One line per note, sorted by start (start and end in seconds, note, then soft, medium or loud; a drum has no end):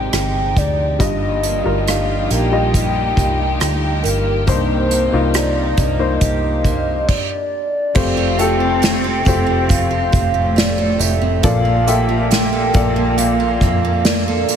0.00 0.97 C3 medium
0.00 7.04 F3 medium
0.00 0.97 G#3 medium
0.00 1.00 G#3 medium
0.00 1.01 G#3 medium
0.00 0.55 C4 soft
0.00 0.13 D#4 soft
0.00 0.97 D#4 medium
0.00 0.95 G4 medium
0.00 1.02 G4 medium
0.00 2.74 G4 medium
0.00 1.01 C5 medium
0.00 1.02 D5 medium
0.00 0.73 D#5 medium
0.00 0.59 G5 loud
0.13 0.53 G1 medium
0.13 1.87 D#4 medium
0.13 cross-stick loud
0.13 closed hi-hat medium
0.56 0.97 D2 medium
0.56 1.09 C4 soft
0.56 1.02 D5 medium
0.56 kick medium
0.56 closed hi-hat medium
0.99 1.61 G1 medium
0.99 2.26 G2 medium
0.99 4.48 G2 medium
0.99 1.61 G3 medium
0.99 7.04 A#3 medium
0.99 4.44 D#4 medium
0.99 1.62 F4 medium
0.99 4.44 F4 medium
0.99 7.04 G4 medium
0.99 1.87 D#5 loud
0.99 1.62 D#5 medium
0.99 kick medium
0.99 closed hi-hat medium
1.43 2.30 A#3 medium
1.43 closed hi-hat medium
1.64 2.27 G1 medium
1.64 2.47 G3 medium
1.64 2.48 F4 medium
1.64 2.48 A#4 medium
1.87 3.60 D#4 medium
1.87 2.32 F5 medium
1.87 cross-stick loud
1.87 closed hi-hat medium
2.31 3.13 A#1 medium
2.31 3.17 A#3 medium
2.31 4.02 G5 loud
2.31 closed hi-hat medium
2.52 4.17 G3 medium
2.52 4.17 F4 medium
2.52 4.18 D#5 medium
2.74 6.21 G4 medium
2.74 kick medium
2.74 closed hi-hat medium
3.17 3.57 C2 medium
3.17 4.03 A#3 medium
3.17 kick medium
3.17 closed hi-hat soft
3.60 4.01 D2 medium
3.60 5.34 D#4 medium
3.60 cross-stick loud
3.60 closed hi-hat medium
4.02 4.45 G1 medium
4.02 4.91 A#3 medium
4.02 4.44 A#4 medium
4.02 closed hi-hat medium
4.47 5.09 C2 medium
4.47 5.74 G2 medium
4.47 7.17 C3 medium
4.47 7.06 C3 medium
4.47 5.09 A#3 medium
4.47 5.10 D#4 medium
4.47 7.06 D#4 medium
4.47 5.36 C5 medium
4.47 5.10 C5 medium
4.47 kick medium
4.47 closed hi-hat medium
4.91 5.77 A#3 medium
4.91 closed hi-hat medium
5.12 5.74 C2 medium
5.12 5.95 A#3 medium
5.12 5.96 D#4 medium
5.12 5.96 F4 medium
5.34 7.17 D#4 medium
5.34 5.80 D5 medium
5.34 cross-stick loud
5.34 closed hi-hat medium
5.77 6.18 C2 medium
5.77 6.64 A#3 medium
5.77 7.07 D#5 medium
5.77 kick medium
5.77 closed hi-hat medium
5.99 7.08 A#3 medium
5.99 7.08 D#4 medium
5.99 7.09 C5 medium
6.21 7.04 C2 medium
6.21 7.67 G4 medium
6.21 kick medium
6.21 closed hi-hat medium
6.65 7.17 A#3 medium
6.65 kick medium
6.65 closed hi-hat medium
7.08 7.97 D5 medium
7.08 kick medium
7.08 crash medium
7.95 9.22 F1 loud
7.95 10.09 C3 medium
7.95 9.22 C3 medium
7.95 9.69 F3 medium
7.95 8.36 A3 medium
7.95 10.09 C4 medium
7.95 8.36 F4 medium
7.95 8.37 G4 medium
7.95 8.37 C5 medium
7.95 8.40 F5 loud
7.95 kick loud
7.95 crash loud
8.17 8.59 G4 medium
8.39 9.21 A3 medium
8.39 8.81 C4 medium
8.39 9.22 F4 medium
8.39 9.22 G4 medium
8.39 9.22 A4 medium
8.39 9.71 G5 loud
8.39 closed hi-hat medium
8.60 9.24 G4 medium
8.82 9.45 C4 medium
8.82 snare loud
8.82 closed hi-hat medium
9.04 10.78 A4 medium
9.25 10.09 F1 loud
9.25 10.91 A3 medium
9.25 10.92 F4 medium
9.25 9.89 G4 medium
9.25 10.92 G4 medium
9.25 10.92 C5 medium
9.25 kick loud
9.25 closed hi-hat medium
9.47 10.11 C4 medium
9.69 13.19 F3 medium
9.69 10.59 F5 loud
9.69 kick medium
9.69 closed hi-hat loud
9.91 10.33 G4 medium
10.12 10.96 F1 loud
10.12 11.41 A2 medium
10.12 11.41 A3 medium
10.12 10.55 C4 medium
10.12 kick medium
10.12 closed hi-hat medium
10.34 10.98 G4 medium
10.56 11.20 C4 medium
10.56 11.02 D5 loud
10.56 snare loud
10.56 closed hi-hat medium
10.78 11.90 A4 medium
10.99 11.40 F1 medium
10.99 11.52 G4 medium
10.99 11.43 E5 loud
10.99 closed hi-hat medium
11.21 11.52 C4 medium
11.43 12.70 A#1 loud
11.43 13.17 A#2 medium
11.43 14.56 A#2 medium
11.43 12.70 A#2 medium
11.43 12.70 F3 medium
11.43 14.56 A#3 medium
11.43 11.85 A#3 medium
11.43 11.85 F4 medium
11.43 11.85 A4 medium
11.43 11.85 D5 medium
11.43 11.89 F5 loud
11.43 kick loud
11.43 closed hi-hat loud
11.65 12.08 F4 medium
11.87 12.69 A#3 medium
11.87 12.30 A#3 medium
11.87 12.70 F4 medium
11.87 12.70 A4 medium
11.87 12.70 E5 medium
11.87 13.17 G5 loud
11.87 closed hi-hat medium
12.09 12.73 F4 medium
12.31 12.95 A#3 medium
12.31 snare loud
12.31 closed hi-hat medium
12.53 14.27 A4 medium
12.74 13.57 A#1 loud
12.74 14.39 A#3 medium
12.74 13.39 F4 medium
12.74 14.39 F4 medium
12.74 14.40 A4 medium
12.74 14.40 D5 medium
12.74 kick loud
12.74 closed hi-hat medium
12.96 13.61 A#3 medium
13.18 14.56 A#2 medium
13.18 14.07 F5 loud
13.18 closed hi-hat medium
13.40 13.84 F4 medium
13.61 14.44 F2 loud
13.61 14.05 A#3 medium
13.61 kick medium
13.61 closed hi-hat medium
13.85 14.50 F4 medium
14.05 14.56 A#3 medium
14.05 14.56 D5 medium
14.05 snare loud
14.05 closed hi-hat medium
14.28 14.56 A4 medium
14.49 14.56 F4 medium
14.49 closed hi-hat medium